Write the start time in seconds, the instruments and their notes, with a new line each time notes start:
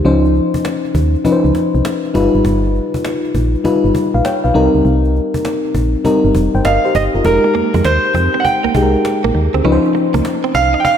0.05 fm bass C#2, fm electric piano F3 C#4 D#4 C5, cajon slap
0.24 cajon slap
0.35 cajon slap
0.54 cajon bass
0.65 cajon slap
0.85 cajon slap
0.95 fm bass D#2, cajon bass
1.14 cajon slap
1.24 fm electric piano F3 C#4 D#4 B4, cajon bass
1.32 fm electric piano C5
1.45 fm bass C#2, cajon slap
1.55 cajon bass, cajon slap
1.74 fm bass C2, cajon slap
1.85 cajon slap
2.04 cajon slap
2.14 fm bass G1, fm electric piano G3 D#4 F4 B4, cajon bass
2.34 fm bass G#1, cajon slap
2.45 fm bass G1, cajon bass
2.64 cajon slap
2.75 cajon slap
2.94 cajon bass
3.05 cajon slap
3.24 cajon slap
3.35 fm bass A#1, cajon bass
3.54 cajon slap
3.64 fm electric piano G3 D#4 F4 B4, cajon bass
3.84 fm bass G1, cajon slap
3.95 cajon bass, cajon slap
4.14 fm bass A#1, fm electric piano B4 F5, cajon slap
4.25 fm electric piano C#5 G5, cajon slap
4.44 fm bass B1, fm electric piano B4 F5, cajon slap
4.54 fm bass C2, fm electric piano G3 C4 D#4 A#4, cajon slap
4.74 fm bass C#2, cajon slap
4.85 fm bass C2, cajon slap
5.04 cajon slap
5.15 cajon slap
5.34 cajon bass
5.45 cajon slap
5.64 cajon slap
5.75 fm bass A#1, cajon bass
5.94 cajon slap
6.04 fm electric piano G3 C4 D#4 A#4, cajon bass
6.24 fm bass G1, cajon slap
6.35 fm bass F1, cajon bass, cajon slap
6.54 fm bass G1, fm electric piano C5 G5, cajon slap
6.65 fm bass G1, fm electric piano A#4 D#5, grand piano F5, cajon slap
6.84 fm electric piano G4 C5, cajon slap
6.95 fm bass G1, grand piano D#5, cajon bass
7.14 fm bass F#1, fm electric piano F4 A#4, cajon slap
7.25 fm bass F1, fm electric piano G#3 D#4 G4 A#4, grand piano A#4, cajon bass
7.44 muted clean electric guitar stroke, cajon slap
7.54 fm bass F2, clean electric guitar A#3, cajon slap
7.74 fm bass F2, clean electric guitar G#3, cajon bass
7.84 fm bass D#2, grand piano C5, muted clean electric guitar stroke, cajon slap
8.04 cajon slap
8.14 fm bass F2, clean electric guitar C4, cajon bass
8.34 clean electric guitar C4, cajon slap
8.40 grand piano F#5
8.45 grand piano G5, muted clean electric guitar stroke, cajon bass
8.64 fm bass C2, clean electric guitar A#3, cajon slap
8.75 fm bass C2, fm electric piano G#3 D#4 G4 G#4, clean electric guitar G#3, cajon bass, cajon slap
8.82 fm electric piano A#4
8.94 cajon slap
9.05 cajon slap
9.24 fm bass A#1, clean electric guitar A#3, cajon slap
9.35 fm bass D#2, muted clean electric guitar stroke
9.54 fm bass D2, clean electric guitar C4, cajon slap
9.64 fm bass C#2, fm electric piano F3 C#4 D#4 B4, clean electric guitar C#4, cajon slap
9.72 fm electric piano C5
9.84 cajon slap
9.95 muted clean electric guitar stroke, cajon slap
10.14 fm bass C#2, clean electric guitar A#3, cajon bass
10.25 cajon slap
10.44 clean electric guitar C4, cajon slap
10.55 fm bass C2, grand piano F5, muted clean electric guitar stroke, cajon bass
10.74 clean electric guitar D#4, cajon slap
10.80 grand piano G5
10.85 grand piano F5, cajon bass